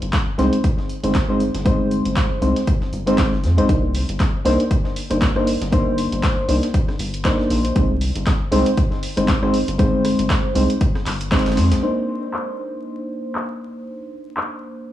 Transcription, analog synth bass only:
0.02 G1
0.39 C2
1.04 G1
1.55 G1
2.05 G1
2.42 C2
2.93 G1
3.33 G1
3.44 F2
3.58 A#1
3.69 C2
4.09 G1
4.46 C2
5.11 G1
5.61 G1
6.12 G1
6.49 C2
7.00 G1
7.50 A#1
7.76 C2
8.16 G1
8.52 C2
9.17 G1
9.68 G1
10.19 G1
10.55 C2
11.06 G1
11.46 G1
11.57 F2
11.72 A#1

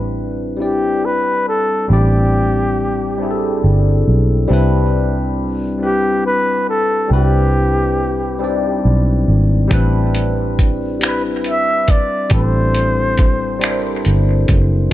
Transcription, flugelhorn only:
0.62 G4
1.05 B4
1.48 A4
1.93 G4
5.84 G4
6.27 B4
6.69 A4
7.13 G4
11.07 B4
11.49 E5
11.91 D5
12.33 C5

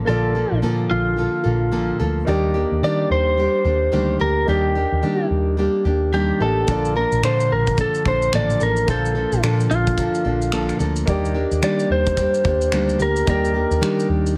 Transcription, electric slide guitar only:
0.07 A4
0.91 F4
2.84 D5
3.12 C5
4.21 A#4
4.49 G4
6.14 G4
6.42 A4
6.97 A#4
7.25 C5
7.52 A#4
7.81 A4
8.08 C5
8.35 D5
8.63 A#4
8.91 A4
9.71 F4
11.64 D5
11.92 C5
13.02 A#4
13.30 A#4

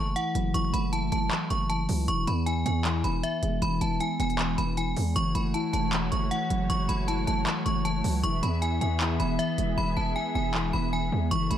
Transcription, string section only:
5.16 E3 A3 F#4 C#5
8.24 E3 B3 G#4 E5
11.31 F#3 C#4 A4 E5

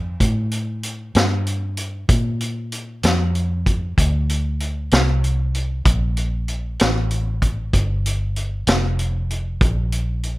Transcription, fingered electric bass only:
Already playing: F2
0.21 A2
1.15 G2
2.09 A#2
3.04 F2
3.98 D2
4.92 C2
5.85 A#1
6.81 A1
7.74 G1
8.67 F1
9.61 A#1

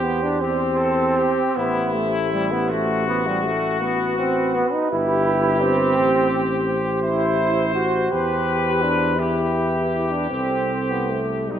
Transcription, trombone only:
0.04 B3
0.23 D4
0.41 C4
1.56 B3
1.95 A3
2.33 G3
2.52 B3
2.71 A3
3.07 B3
3.27 G3
3.46 A3
3.82 B3
4.19 C4
4.55 B3
4.73 D#4
4.92 E4
5.62 C4
7.03 E4
7.75 F#4
8.12 G4
8.83 D4
9.19 E4
10.11 D4
10.30 C4
10.90 B3
11.10 A3
11.50 G3

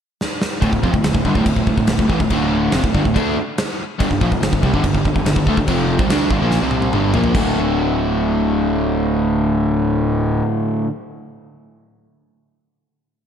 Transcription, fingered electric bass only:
0.62 D1
0.73 D1
0.84 F1
0.94 D1
1.04 D1
1.14 D1
1.25 G1
1.35 D1
1.46 D1
1.56 D1
1.67 D1
1.77 D1
1.89 D1
1.99 D1
2.10 A1
2.20 D1
2.30 D1
2.73 F1
2.84 D1
2.94 G1
3.05 D1
3.16 D2
4.00 G1
4.11 G1
4.21 A#1
4.32 G1
4.42 G1
4.52 G1
4.63 C2
4.74 G1
4.84 G1
4.94 G1
5.05 G1
5.15 G1
5.25 G1
5.36 G1
5.47 D2
5.57 G1
5.68 F1
5.99 C2
6.08 D2
6.30 G1
6.41 A#1
6.62 C2
6.93 G1
7.14 A#1
7.34 D1

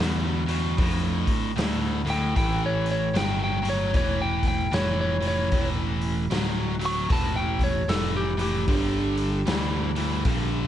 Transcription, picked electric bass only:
0.00 E2
0.79 F2
1.28 muted picked electric bass stroke
1.57 D2
2.36 A1
3.15 G1
3.94 E1
4.73 F1
5.53 E1
6.31 D1
7.10 E1
7.88 F1
8.68 G1
9.47 D2
10.25 A#1

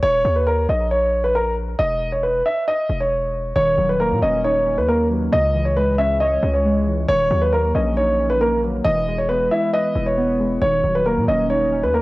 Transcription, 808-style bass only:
0.03 D#1
0.25 D#2
0.69 A#1
1.79 E1
2.90 E1
3.56 D#1
3.78 D#1
4.11 A#2
4.22 D#1
4.77 D#2
5.32 C#2
6.43 C#2
7.09 D#1
7.31 D#2
7.75 A#1
8.85 E1
9.96 E1
10.62 D#1
10.84 D#1
11.17 A#2
11.28 D#1
11.83 D#2

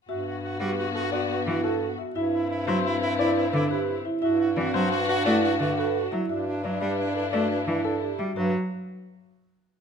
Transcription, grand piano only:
0.09 E5
0.60 B4
0.95 A4
1.12 D5
1.47 E5
1.64 A4
1.98 E5
2.16 E5
2.68 C5
3.02 B4
3.19 D5
3.53 E5
3.71 B4
4.05 E5
4.22 E5
4.57 D5
4.74 C5
5.09 B4
5.26 D5
5.60 E5
5.78 B4
6.12 E5
6.29 E5
6.64 D5
6.81 B4
7.16 A4
7.33 D5
7.68 E5
7.85 A4
8.19 E5
8.37 B4

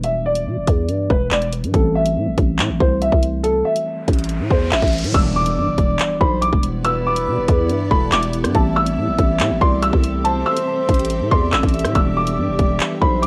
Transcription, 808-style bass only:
Already playing: E1
0.46 B2
0.57 E1
0.67 E2
0.89 G2
1.10 E1
1.31 E1
1.63 G2
1.74 A1
2.16 A2
2.27 A1
2.38 A1
2.59 A2
2.70 A1
2.80 C2
3.12 C2
4.08 A1
4.40 A2
4.51 E2
4.72 A1
4.82 A1
5.04 A2
5.14 E1
5.57 G2
5.68 E1
5.78 E1
6.21 B1
6.53 E1
7.27 B2
7.38 E1
7.48 E2
7.70 G2
7.91 E1
8.12 E1
8.44 G2
8.55 A1
8.97 A2
9.08 A1
9.19 A1
9.40 A2
9.51 A1
9.61 C2
9.93 C2
10.89 A1
11.21 A2
11.31 E2
11.53 A1
11.63 A1
11.85 A2
11.95 E1
12.38 G2
12.48 E1
12.59 E1
13.02 B1

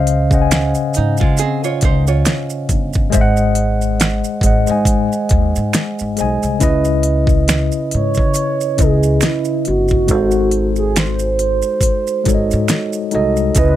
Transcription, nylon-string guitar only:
0.96 D#4
1.20 G#3 F4
1.39 C4 G#4
1.64 F4 C#5
1.85 D#4 C5
2.08 F4 C#5

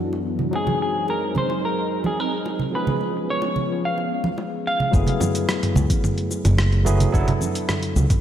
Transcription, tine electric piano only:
Already playing: F#3 B3 D4 E4 A4
0.51 F#3 G#3 C4 D#4
0.55 G#4
2.71 F3 G#3 B3 C#4
2.76 G#4
4.91 F#3 A3 B3 E4
4.96 G#4
6.84 F#3 A3 B3 E4 G#4
7.12 F#3 B3 D4 E4 A4

